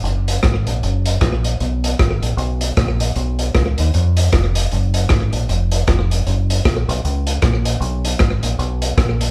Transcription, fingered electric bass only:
X:1
M:4/4
L:1/8
Q:"Swing" 1/4=155
K:F#
V:1 name="Fingered electric bass" clef=bass
F,,,2 G,,, A,,, F,,,2 A,,,2 | B,,,2 G,,, A,,, B,,,2 A,,,2 | B,,,2 C,, D,, E,,2 E,,,2 | F,,,2 G,,, A,,, E,,,2 E,,,2 |
F,,,2 A,,, B,,, C,,2 A,,,2 | B,,,2 G,,, A,,, B,,,2 A,,,2 |]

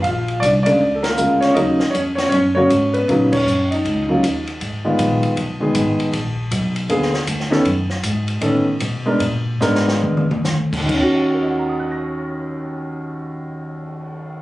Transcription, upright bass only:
X:1
M:4/4
L:1/8
Q:"Swing" 1/4=158
K:Ebm
V:1 name="Upright bass" clef=bass
B,,,2 =C,,2 ^C,,2 =D,,2 | E,,2 F,,2 G,,2 A,,2 | B,,2 G,,2 D,,2 E,,2 | A,,,2 B,,, z C,,2 A,,, z |
B,,,2 C,,2 E,,2 =D,,2 | ^F,,2 A,,2 =A,,2 =B,,2 | B,,2 A,,2 F,,2 =D,,2 | E,,8- |
E,,8 |]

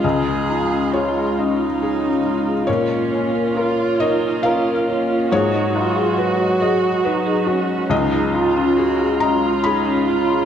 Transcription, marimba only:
X:1
M:3/4
L:1/16
Q:1/4=69
K:Dbmix
V:1 name="Marimba"
D A F D z A D z d D z A | B f d B z f B z b B z f | A e c A z e A z g A z e | D A F D z A D z d D z A |]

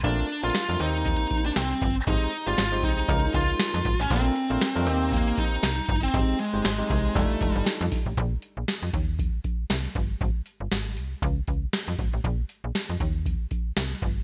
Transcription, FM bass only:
X:1
M:4/4
L:1/16
Q:"Swing 16ths" 1/4=118
K:Eblyd
V:1 name="FM bass" clef=bass
B,,,2 z B,,, z F,, E,,4 z2 C,,2 G,,,2 | _A,,, z2 G,,, A,,,2 C,,2 _D,,2 D,,2 z F,, A,,, =A,,, | B,,,2 z B,,, z F,, E,,4 z2 C,,2 G,,,2 | _A,,, z2 G,,, A,,,2 C,,2 F,,, z F,,, G,,, z F,, z =A,,, |
B,,,2 z B,,, z F,, E,,4 z2 C,,2 G,,,2 | _A,,, z2 G,,, A,,,2 C,,2 _D,,2 D,,2 z F,, A,,, =A,,, | B,,,2 z B,,, z F,, E,,4 z2 C,,2 G,,,2 |]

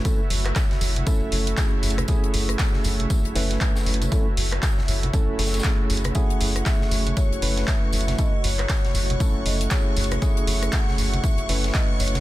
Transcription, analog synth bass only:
X:1
M:4/4
L:1/16
Q:"Swing 16ths" 1/4=118
K:F#m
V:1 name="Analog synth bass" clef=bass
z2 F,,,2 z2 F,,,2 z F,,, F,,,2 z2 F,,,2 | z2 F,,,2 z2 F,,,2 z F,,, F,,,2 z2 F,,,2 | z2 F,,,2 z2 F,,,2 z F,,, F,,,2 z2 F,,,2 | z2 F,,,2 z2 F,,,2 z F,,, F,,,2 z2 F,,,2 |
z2 F,,,2 z2 F,,,2 z F,,, F,,,2 z2 F,,,2 | z2 F,,,2 z2 F,,,2 z F,,, F,,,2 z2 F,,,2 |]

